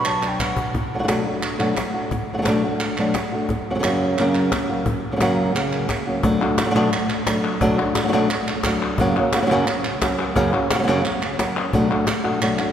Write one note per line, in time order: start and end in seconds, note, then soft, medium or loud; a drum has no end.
0.00 1.06 B2 medium
0.00 0.39 B3 medium
0.00 0.21 D4 medium
0.00 0.94 F#4 medium
0.05 0.56 F#3 medium
0.05 0.30 A5 loud
0.05 clap medium
0.22 0.72 D4 medium
0.22 cajon slap medium
0.22 clap medium
0.28 0.41 G5 medium
0.39 0.72 B3 medium
0.39 0.74 F#5 medium
0.39 cajon bass medium
0.39 clap medium
0.57 0.72 F#3 medium
0.57 cajon bass medium
0.74 muted nylon-string guitar stroke medium
0.74 cajon bass medium
0.74 cajon slap soft
0.92 0.97 F#3 soft
0.92 0.98 A3 medium
0.92 0.98 D4 medium
0.92 0.99 F#4 medium
0.92 cajon slap soft
0.98 1.02 F#3 medium
0.98 1.02 A3 medium
0.98 1.03 D4 medium
0.98 1.03 F#4 medium
1.03 1.07 F#3 medium
1.03 1.07 A3 medium
1.03 1.07 D4 medium
1.03 1.07 F#4 medium
1.08 1.24 B2 medium
1.08 1.25 F#3 medium
1.08 1.25 A3 medium
1.08 1.25 D4 medium
1.08 1.23 F#4 medium
1.08 cajon slap loud
1.08 clap medium
1.25 1.58 A3 soft
1.25 1.59 D4 soft
1.25 1.59 F#4 medium
1.43 clap medium
1.58 1.76 B2 medium
1.58 1.76 F#3 medium
1.58 1.76 A3 medium
1.58 1.76 D4 medium
1.58 1.77 F#4 medium
1.58 clap medium
1.77 muted nylon-string guitar stroke medium
1.77 cajon slap loud
1.77 clap medium
1.94 2.11 A3 soft
1.94 2.11 D4 soft
1.94 2.11 F#4 soft
2.11 muted nylon-string guitar stroke medium
2.11 cajon bass medium
2.29 cajon slap soft
2.33 2.36 F#3 soft
2.33 2.37 A3 soft
2.33 2.37 D4 soft
2.33 2.38 F#4 medium
2.38 2.41 F#3 medium
2.38 2.42 A3 medium
2.38 2.42 D4 medium
2.38 2.42 F#4 medium
2.42 2.46 F#3 medium
2.42 2.46 A3 medium
2.42 2.46 D4 medium
2.42 2.47 F#4 medium
2.42 cajon slap loud
2.42 clap medium
2.47 2.63 B2 medium
2.47 2.63 F#3 medium
2.47 2.63 A3 medium
2.47 2.63 D4 medium
2.47 2.63 F#4 medium
2.64 2.98 A3 soft
2.64 2.98 D4 soft
2.64 2.97 F#4 soft
2.80 clap medium
2.97 3.15 B2 medium
2.97 3.15 F#3 medium
2.97 3.15 A3 medium
2.97 3.15 D4 medium
2.97 3.16 F#4 medium
2.97 clap medium
3.15 muted nylon-string guitar stroke medium
3.15 cajon slap loud
3.15 clap medium
3.32 3.50 A3 soft
3.32 3.49 D4 medium
3.32 3.49 F#4 medium
3.32 cajon slap soft
3.49 muted nylon-string guitar stroke medium
3.49 cajon bass medium
3.49 cajon slap soft
3.70 3.73 C#3 medium
3.70 3.74 F#3 medium
3.70 3.74 A#3 medium
3.70 3.75 C#4 medium
3.70 3.75 F#4 medium
3.75 3.78 C#3 medium
3.75 3.78 F#3 medium
3.75 3.78 A#3 medium
3.75 3.79 C#4 medium
3.75 3.79 F#4 medium
3.79 3.83 C#3 medium
3.79 3.83 F#3 medium
3.79 3.83 A#3 medium
3.79 3.83 C#4 medium
3.79 3.84 F#4 medium
3.79 cajon slap medium
3.84 4.17 F#2 medium
3.84 4.18 C#3 medium
3.84 4.18 F#3 medium
3.84 4.18 A#3 medium
3.84 4.18 C#4 medium
3.84 4.18 F#4 medium
3.84 clap medium
4.18 4.51 F#2 medium
4.18 4.52 C#3 medium
4.18 4.52 F#3 medium
4.18 4.52 A#3 medium
4.18 4.52 C#4 medium
4.18 4.52 F#4 medium
4.18 clap medium
4.35 clap medium
4.52 muted nylon-string guitar stroke medium
4.52 cajon bass medium
4.52 cajon slap loud
4.52 clap medium
4.69 4.87 F#3 soft
4.69 4.87 A#3 soft
4.69 4.86 C#4 soft
4.69 4.86 F#4 soft
4.86 muted nylon-string guitar stroke medium
4.86 cajon bass medium
5.12 5.15 C#3 soft
5.12 5.15 F#3 medium
5.12 5.16 A#3 medium
5.12 5.16 C#4 medium
5.12 5.16 F#4 medium
5.16 5.20 C#3 medium
5.16 5.20 F#3 medium
5.16 5.20 A#3 medium
5.16 5.21 C#4 medium
5.16 5.21 F#4 medium
5.20 5.53 F#2 medium
5.20 5.53 C#3 medium
5.20 5.54 F#3 medium
5.20 5.54 A#3 loud
5.20 5.54 C#4 medium
5.20 5.55 F#4 medium
5.20 cajon slap loud
5.20 clap medium
5.54 5.88 F#2 medium
5.54 5.89 C#3 medium
5.54 5.89 F#3 medium
5.54 5.89 A#3 medium
5.54 5.89 C#4 medium
5.54 5.90 F#4 medium
5.54 clap medium
5.73 clap medium
5.89 muted nylon-string guitar stroke medium
5.89 cajon bass medium
5.89 cajon slap medium
5.89 clap medium
6.07 6.22 F#3 soft
6.07 6.23 A#3 soft
6.07 6.24 C#4 soft
6.07 6.23 F#4 medium
6.23 6.40 B2 medium
6.23 6.41 F#3 loud
6.23 6.41 A3 loud
6.23 6.40 D4 loud
6.23 6.39 F#4 loud
6.23 cajon bass loud
6.40 6.59 A3 medium
6.40 6.58 D4 medium
6.40 6.57 F#4 medium
6.40 clap medium
6.58 6.64 F#3 medium
6.58 6.62 A3 medium
6.58 6.61 D4 medium
6.58 6.61 F#4 medium
6.58 cajon slap loud
6.58 clap loud
6.62 6.69 F#3 medium
6.62 6.70 A3 medium
6.62 6.70 D4 medium
6.62 6.66 F#4 medium
6.67 6.74 F#3 medium
6.67 6.74 A3 medium
6.67 6.70 F#4 medium
6.71 6.91 B2 medium
6.71 6.74 D4 loud
6.71 6.75 F#4 medium
6.75 6.91 F#3 loud
6.75 6.91 A3 loud
6.75 6.91 D4 loud
6.75 6.92 F#4 loud
6.75 clap medium
6.92 muted nylon-string guitar stroke medium
6.92 clap medium
7.10 clap medium
7.27 7.60 F#3 medium
7.27 7.60 A3 medium
7.27 7.60 D4 medium
7.27 7.61 F#4 medium
7.27 cajon slap loud
7.27 clap medium
7.44 cajon slap soft
7.44 clap medium
7.60 7.77 B2 loud
7.60 7.78 F#3 loud
7.60 7.78 A3 loud
7.60 7.78 D4 loud
7.60 7.77 F#4 medium
7.60 cajon bass loud
7.78 7.96 A3 medium
7.78 7.95 D4 medium
7.78 7.94 F#4 medium
7.78 cajon slap soft
7.78 clap medium
7.95 8.03 A3 medium
7.95 8.03 D4 medium
7.95 8.04 F#4 medium
7.95 cajon slap loud
7.95 clap loud
8.03 8.07 F#3 medium
8.03 8.07 A3 medium
8.03 8.08 D4 medium
8.03 8.08 F#4 medium
8.08 8.12 F#3 medium
8.08 8.12 A3 medium
8.08 8.12 D4 medium
8.08 8.13 F#4 loud
8.13 8.29 B2 medium
8.13 8.29 F#3 medium
8.13 8.30 A3 loud
8.13 8.30 D4 loud
8.13 8.30 F#4 loud
8.13 clap medium
8.30 muted nylon-string guitar stroke medium
8.30 clap medium
8.48 clap medium
8.63 8.98 F#3 medium
8.63 8.99 A3 medium
8.63 8.99 D4 medium
8.63 8.99 F#4 medium
8.63 cajon bass medium
8.63 cajon slap loud
8.63 clap loud
8.81 cajon slap soft
8.81 clap medium
8.98 9.15 F#2 loud
8.98 9.16 C#3 loud
8.98 9.16 F#3 medium
8.98 9.16 A#3 loud
8.98 9.16 C#4 loud
8.98 9.16 F#4 loud
8.98 cajon bass loud
9.15 9.34 A#3 medium
9.15 9.33 C#4 medium
9.15 9.33 F#4 medium
9.15 cajon slap soft
9.15 clap medium
9.20 9.34 F#3 medium
9.33 9.41 F#3 soft
9.33 9.41 A#3 medium
9.33 9.41 C#4 medium
9.33 9.41 F#4 medium
9.33 cajon slap loud
9.33 clap loud
9.41 9.45 C#3 medium
9.41 9.45 F#3 medium
9.41 9.45 A#3 medium
9.41 9.45 C#4 medium
9.41 9.46 F#4 medium
9.46 9.50 C#3 medium
9.46 9.50 F#3 medium
9.46 9.50 A#3 medium
9.46 9.50 C#4 medium
9.46 9.51 F#4 medium
9.50 9.66 F#2 loud
9.50 9.67 C#3 medium
9.50 9.67 F#3 medium
9.50 9.67 A#3 loud
9.50 9.67 C#4 loud
9.50 9.67 F#4 loud
9.50 clap soft
9.67 muted nylon-string guitar stroke medium
9.67 clap medium
9.85 clap medium
10.02 10.35 F#3 medium
10.02 10.35 A#3 medium
10.02 10.35 C#4 medium
10.02 10.35 F#4 medium
10.02 cajon bass medium
10.02 cajon slap loud
10.02 clap medium
10.18 cajon slap soft
10.18 clap medium
10.35 10.52 F#2 loud
10.35 10.52 C#3 loud
10.35 10.53 F#3 loud
10.35 10.53 A#3 loud
10.35 10.53 C#4 loud
10.35 10.52 F#4 loud
10.35 cajon bass loud
10.35 cajon slap soft
10.53 10.71 F#3 medium
10.53 10.70 A#3 medium
10.53 10.70 C#4 medium
10.53 10.69 F#4 medium
10.53 clap medium
10.70 10.74 F#3 soft
10.70 10.74 A#3 medium
10.70 10.74 C#4 medium
10.70 10.74 F#4 medium
10.70 cajon slap loud
10.70 clap loud
10.74 10.77 C#3 medium
10.74 10.82 C#3 medium
10.74 10.78 A#3 medium
10.74 10.78 C#4 medium
10.74 10.78 F#4 medium
10.79 10.82 F#3 medium
10.79 10.82 A#3 medium
10.79 10.83 C#4 medium
10.79 10.83 F#4 medium
10.83 10.86 C#3 medium
10.83 10.87 F#3 medium
10.83 10.87 A#3 medium
10.83 10.87 C#4 loud
10.83 10.88 F#4 medium
10.87 11.03 F#2 medium
10.87 11.03 C#3 loud
10.87 11.04 F#3 loud
10.87 11.04 A#3 loud
10.87 11.04 C#4 loud
10.87 11.04 F#4 medium
10.87 clap medium
11.04 muted nylon-string guitar stroke medium
11.04 clap medium
11.22 clap medium
11.38 11.72 F#3 medium
11.38 11.73 A#3 medium
11.38 11.73 C#4 medium
11.38 11.73 F#4 medium
11.38 cajon slap loud
11.38 clap medium
11.57 cajon slap soft
11.57 clap medium
11.72 11.89 B2 medium
11.72 11.90 F#3 loud
11.72 11.90 A3 loud
11.72 11.89 D4 loud
11.72 11.88 F#4 loud
11.72 cajon bass medium
11.90 12.07 A3 medium
11.90 12.06 D4 medium
11.90 12.06 F#4 medium
11.90 cajon slap soft
11.90 clap medium
12.07 muted nylon-string guitar stroke medium
12.07 cajon slap loud
12.07 clap medium
12.24 12.41 A3 medium
12.24 12.41 D4 medium
12.24 12.41 F#4 medium
12.24 clap soft
12.41 12.58 B2 medium
12.41 12.58 F#3 medium
12.41 12.58 A3 medium
12.41 12.59 D4 medium
12.41 12.58 F#4 loud
12.41 clap medium
12.59 12.72 A3 medium
12.59 12.72 D4 medium
12.59 12.72 F#4 medium
12.59 clap medium